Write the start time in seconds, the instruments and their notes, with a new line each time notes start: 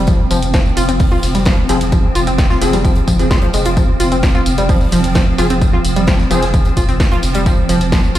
Already playing: synth drone F3 C4
0.07 synth arpeggio sound F3, kick, closed hi-hat, tambourine
0.31 sub bass F1, synth arpeggio sound F3, open hi-hat, tambourine
0.42 sub bass F1, closed hi-hat, tambourine
0.54 synth arpeggio sound F3, kick, snare, closed hi-hat, tambourine
0.66 tambourine
0.77 sub bass F1, synth arpeggio sound F4, open hi-hat, tambourine
0.89 sub bass F1, synth arpeggio sound C4, closed hi-hat, tambourine
1.00 kick, closed hi-hat, open hi-hat, tambourine
1.12 synth arpeggio sound F4, tambourine
1.22 sub bass F1, snare, open hi-hat, tambourine
1.35 sub bass F1, synth arpeggio sound G3, closed hi-hat, tambourine
1.45 synth arpeggio sound F3, kick, snare, closed hi-hat, tambourine
1.69 sub bass F1, synth arpeggio sound F3, synth stab F3 C4 G#4, snare, open hi-hat, tambourine
1.81 sub bass F1, closed hi-hat, tambourine
1.92 synth arpeggio sound F3, kick, closed hi-hat, tambourine
2.15 sub bass F1, synth arpeggio sound F4, open hi-hat, tambourine
2.27 sub bass F1, synth arpeggio sound C4, closed hi-hat, tambourine
2.38 kick, snare, closed hi-hat, tambourine
2.50 synth arpeggio sound F4, snare, tambourine
2.61 sub bass F1, synth stab F3 C4 G#4, open hi-hat, tambourine
2.73 sub bass F1, synth arpeggio sound G3, snare, closed hi-hat, tambourine
2.85 synth arpeggio sound F3, kick, closed hi-hat, tambourine
2.95 closed hi-hat, tambourine
3.07 sub bass F1, synth arpeggio sound F3, kick, open hi-hat, tambourine
3.19 sub bass F1, synth stab F3 C4 G#4, open hi-hat, tambourine
3.31 synth arpeggio sound F4, kick, snare, closed hi-hat, tambourine
3.42 synth arpeggio sound F3, closed hi-hat
3.53 sub bass F1, synth arpeggio sound G#3, snare, open hi-hat, tambourine
3.65 sub bass F1, synth arpeggio sound F4, closed hi-hat, tambourine
3.77 synth arpeggio sound F3, kick, closed hi-hat, tambourine
4.00 sub bass F1, synth arpeggio sound F4, open hi-hat, tambourine
4.12 sub bass F1, synth arpeggio sound C4, closed hi-hat, tambourine
4.23 kick, snare, closed hi-hat, tambourine
4.35 synth arpeggio sound F4, tambourine
4.46 sub bass F1, open hi-hat, tambourine
4.58 sub bass F1, synth arpeggio sound G3, closed hi-hat, tambourine
4.69 synth arpeggio sound F3, kick, closed hi-hat, open hi-hat, tambourine
4.81 tambourine
4.92 sub bass F1, synth arpeggio sound F3, snare, open hi-hat, tambourine
5.04 sub bass F1, closed hi-hat, tambourine
5.15 synth arpeggio sound F3, kick, snare, closed hi-hat, tambourine
5.38 sub bass F1, synth stab F3 C4 G#4, synth arpeggio sound F4, snare, open hi-hat, tambourine
5.50 sub bass F1, synth arpeggio sound C4, closed hi-hat, tambourine
5.61 kick, closed hi-hat, tambourine
5.73 synth arpeggio sound F4
5.84 sub bass F1, open hi-hat, tambourine
5.96 sub bass F1, synth arpeggio sound G3, closed hi-hat, tambourine
6.07 synth arpeggio sound F3, kick, snare, closed hi-hat, tambourine
6.19 snare, tambourine
6.31 sub bass F1, synth arpeggio sound F3, synth stab F3 C4 G#4, open hi-hat, tambourine
6.42 sub bass F1, snare, closed hi-hat, tambourine
6.54 synth arpeggio sound F3, kick, closed hi-hat, tambourine
6.65 closed hi-hat, tambourine
6.77 sub bass F1, synth arpeggio sound F4, kick, open hi-hat, tambourine
6.89 sub bass F1, synth arpeggio sound C4, open hi-hat, tambourine
7.00 kick, snare, closed hi-hat, tambourine
7.12 synth arpeggio sound F4, closed hi-hat
7.23 sub bass F1, snare, open hi-hat, tambourine
7.34 sub bass F1, synth arpeggio sound G3, closed hi-hat, tambourine
7.46 synth arpeggio sound F3, kick, closed hi-hat, tambourine
7.69 sub bass F1, synth arpeggio sound F3, open hi-hat, tambourine
7.81 sub bass F1, closed hi-hat, tambourine
7.92 synth arpeggio sound F3, kick, snare, closed hi-hat, tambourine
8.04 tambourine
8.15 sub bass F1, synth arpeggio sound F4, open hi-hat, tambourine